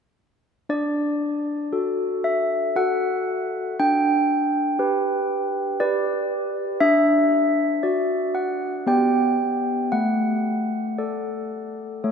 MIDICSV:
0, 0, Header, 1, 2, 480
1, 0, Start_track
1, 0, Key_signature, 2, "major"
1, 0, Tempo, 1030928
1, 322, Time_signature, 3, 2, 24, 8
1, 1758, Tempo, 1015228
1, 4158, Tempo, 1061947
1, 5634, End_track
2, 0, Start_track
2, 0, Title_t, "Handbells"
2, 0, Program_c, 0, 14
2, 323, Note_on_c, 0, 62, 45
2, 325, Note_on_c, 0, 74, 63
2, 791, Note_off_c, 0, 62, 0
2, 803, Note_on_c, 0, 66, 34
2, 804, Note_on_c, 0, 69, 38
2, 1026, Note_off_c, 0, 74, 0
2, 1044, Note_on_c, 0, 76, 64
2, 1262, Note_off_c, 0, 66, 0
2, 1262, Note_off_c, 0, 69, 0
2, 1272, Note_off_c, 0, 76, 0
2, 1284, Note_on_c, 0, 66, 37
2, 1287, Note_on_c, 0, 69, 42
2, 1287, Note_on_c, 0, 78, 75
2, 1742, Note_off_c, 0, 66, 0
2, 1743, Note_off_c, 0, 69, 0
2, 1743, Note_off_c, 0, 78, 0
2, 1767, Note_on_c, 0, 62, 53
2, 1767, Note_on_c, 0, 79, 84
2, 2232, Note_off_c, 0, 62, 0
2, 2237, Note_on_c, 0, 67, 44
2, 2239, Note_on_c, 0, 71, 46
2, 2695, Note_off_c, 0, 67, 0
2, 2696, Note_off_c, 0, 71, 0
2, 2702, Note_off_c, 0, 79, 0
2, 2715, Note_on_c, 0, 74, 76
2, 2716, Note_on_c, 0, 71, 46
2, 2717, Note_on_c, 0, 67, 42
2, 3174, Note_off_c, 0, 74, 0
2, 3175, Note_off_c, 0, 67, 0
2, 3175, Note_off_c, 0, 71, 0
2, 3190, Note_on_c, 0, 76, 84
2, 3191, Note_on_c, 0, 62, 54
2, 3658, Note_off_c, 0, 62, 0
2, 3675, Note_on_c, 0, 74, 44
2, 3676, Note_on_c, 0, 66, 40
2, 3895, Note_off_c, 0, 76, 0
2, 3919, Note_on_c, 0, 78, 58
2, 4140, Note_off_c, 0, 74, 0
2, 4141, Note_off_c, 0, 66, 0
2, 4151, Note_off_c, 0, 78, 0
2, 4164, Note_on_c, 0, 59, 47
2, 4167, Note_on_c, 0, 67, 37
2, 4168, Note_on_c, 0, 79, 70
2, 4170, Note_on_c, 0, 74, 37
2, 4621, Note_off_c, 0, 67, 0
2, 4622, Note_off_c, 0, 79, 0
2, 4623, Note_off_c, 0, 59, 0
2, 4623, Note_off_c, 0, 74, 0
2, 4640, Note_on_c, 0, 78, 60
2, 4643, Note_on_c, 0, 57, 40
2, 5108, Note_off_c, 0, 57, 0
2, 5122, Note_on_c, 0, 69, 31
2, 5122, Note_on_c, 0, 74, 33
2, 5581, Note_off_c, 0, 69, 0
2, 5581, Note_off_c, 0, 74, 0
2, 5599, Note_on_c, 0, 57, 40
2, 5599, Note_on_c, 0, 69, 30
2, 5600, Note_on_c, 0, 73, 28
2, 5634, Note_off_c, 0, 57, 0
2, 5634, Note_off_c, 0, 69, 0
2, 5634, Note_off_c, 0, 73, 0
2, 5634, Note_off_c, 0, 78, 0
2, 5634, End_track
0, 0, End_of_file